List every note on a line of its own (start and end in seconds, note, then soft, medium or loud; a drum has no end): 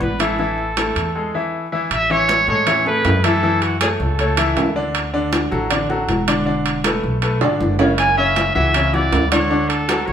0.00 0.90 A1 medium
0.00 0.13 B3 medium
0.00 0.13 B4 medium
0.00 0.21 B4 medium
0.00 0.13 D5 medium
0.00 high conga medium
0.20 0.35 E3 medium
0.20 0.36 E4 medium
0.20 1.69 A4 medium
0.20 0.36 E5 medium
0.20 high conga medium
0.20 high timbale medium
0.39 0.70 E3 medium
0.39 0.70 E4 medium
0.39 0.71 E5 medium
0.39 high conga soft
0.58 high conga soft
0.77 1.09 A3 medium
0.77 1.09 E4 medium
0.77 1.09 A4 medium
0.77 high conga medium
0.77 high timbale medium
0.95 1.31 E2 loud
0.95 high timbale medium
1.15 1.31 G#3 medium
1.15 1.31 G#4 medium
1.15 1.31 A4 medium
1.34 1.65 E3 medium
1.34 1.66 E4 medium
1.34 1.66 E5 medium
1.72 1.88 E3 medium
1.72 1.88 E4 medium
1.72 1.88 E5 medium
1.91 2.44 A1 medium
1.91 2.13 E5 loud
1.91 high conga soft
1.91 high timbale medium
2.10 2.41 E3 medium
2.10 2.41 E4 medium
2.10 2.49 C#5 loud
2.10 2.42 E5 medium
2.10 high conga soft
2.29 high conga medium
2.29 high timbale medium
2.48 3.01 A2 medium
2.48 2.64 G#3 medium
2.48 2.64 G#4 medium
2.48 2.64 A4 medium
2.48 2.84 C#5 loud
2.48 high conga soft
2.66 2.82 E3 medium
2.66 2.83 E4 medium
2.66 2.83 E5 medium
2.66 high conga soft
2.66 low conga medium
2.66 high timbale medium
2.85 3.17 A3 medium
2.85 3.17 G#4 medium
2.85 3.17 A4 medium
2.85 3.25 B4 loud
2.85 high conga soft
2.85 low conga medium
3.05 3.94 F#2 medium
3.05 high conga medium
3.05 high timbale medium
3.05 low timbale medium
3.24 3.40 E3 medium
3.24 3.40 E4 medium
3.24 3.64 A4 loud
3.24 3.40 E5 medium
3.24 high conga medium
3.24 high timbale medium
3.43 3.74 E3 medium
3.43 3.74 E4 medium
3.43 3.74 E5 medium
3.43 high conga soft
3.62 3.80 F#4 medium
3.62 high conga soft
3.62 high timbale medium
3.81 4.12 A3 medium
3.81 3.89 G#4 medium
3.81 4.12 A4 medium
3.81 4.12 C#5 medium
3.81 high conga medium
3.81 high timbale loud
4.00 4.53 C#2 loud
4.00 4.72 A4 medium
4.19 4.34 A3 medium
4.19 4.35 A4 medium
4.19 4.35 C#5 medium
4.19 high conga soft
4.19 high timbale medium
4.37 4.69 E3 medium
4.37 4.69 E4 medium
4.37 4.69 E5 medium
4.37 high conga soft
4.37 high timbale loud
4.57 5.46 D2 medium
4.57 high conga medium
4.57 high timbale medium
4.57 low timbale medium
4.76 5.07 D3 medium
4.76 5.07 D4 medium
4.76 5.07 D5 medium
4.95 high conga soft
4.95 high timbale medium
5.13 5.45 D3 medium
5.13 5.45 D4 medium
5.13 5.45 D5 medium
5.13 high conga soft
5.33 high conga medium
5.33 high timbale medium
5.51 6.05 A1 loud
5.51 5.67 F#3 medium
5.51 5.67 F#4 medium
5.51 5.68 A4 medium
5.51 high conga soft
5.70 5.86 D3 medium
5.70 5.86 D4 medium
5.70 5.86 D5 medium
5.70 high conga soft
5.70 low conga medium
5.70 high timbale medium
5.89 6.21 F#3 medium
5.89 6.21 F#4 medium
5.89 6.21 A4 medium
5.89 high conga soft
5.89 low conga medium
6.08 6.98 E1 loud
6.08 high conga medium
6.08 high timbale medium
6.27 6.43 D3 medium
6.27 6.43 D4 medium
6.27 6.43 D5 medium
6.27 high conga medium
6.27 high timbale loud
6.46 6.77 D3 medium
6.46 6.78 D4 medium
6.46 6.78 D5 medium
6.46 high conga soft
6.66 high conga soft
6.66 high timbale medium
6.84 7.15 A3 medium
6.84 7.16 A4 medium
6.84 7.16 B4 medium
6.84 high conga loud
6.84 high timbale loud
7.03 7.39 B1 medium
7.22 7.38 A3 medium
7.22 7.38 A4 medium
7.22 7.38 B4 medium
7.22 high conga soft
7.22 high timbale medium
7.41 7.59 G#1 medium
7.41 7.73 D3 medium
7.41 7.73 D4 medium
7.41 7.73 D5 medium
7.41 high conga soft
7.41 high timbale medium
7.60 8.50 F#1 medium
7.60 high conga medium
7.79 8.11 C#3 medium
7.79 8.11 C#4 medium
7.79 8.11 C#5 medium
7.79 high conga medium
7.79 low timbale medium
7.98 8.16 G#5 loud
7.98 high conga soft
7.98 high timbale medium
8.17 8.49 C#3 medium
8.17 8.49 C#4 medium
8.17 8.49 C#5 medium
8.17 8.53 E5 loud
8.17 high conga soft
8.36 high conga loud
8.36 high timbale medium
8.55 9.09 C#2 loud
8.55 8.71 E3 medium
8.55 8.71 E4 medium
8.55 8.71 F#4 medium
8.55 8.95 E5 loud
8.55 high conga soft
8.74 8.90 C#3 medium
8.74 8.90 C#4 medium
8.74 8.90 C#5 medium
8.74 high conga soft
8.74 low conga medium
8.74 high timbale medium
8.93 9.25 E3 medium
8.93 9.25 E4 medium
8.93 9.25 F#4 medium
8.93 9.31 D5 loud
8.93 high conga soft
8.93 low conga medium
9.12 10.02 D2 medium
9.12 high conga medium
9.12 high timbale medium
9.12 low timbale medium
9.32 9.47 D3 medium
9.32 9.48 D4 medium
9.32 9.70 C#5 loud
9.32 9.48 D5 medium
9.32 high conga medium
9.32 high timbale loud
9.50 9.81 D3 medium
9.50 9.82 D4 medium
9.50 9.82 D5 medium
9.50 high conga soft
9.69 10.08 A4 loud
9.69 high conga soft
9.69 high timbale medium
9.88 10.13 F#3 medium
9.88 10.13 F#4 medium
9.88 10.13 A4 medium
9.88 high conga medium
9.88 high timbale medium
10.07 10.13 A1 loud
10.07 10.13 C#5 loud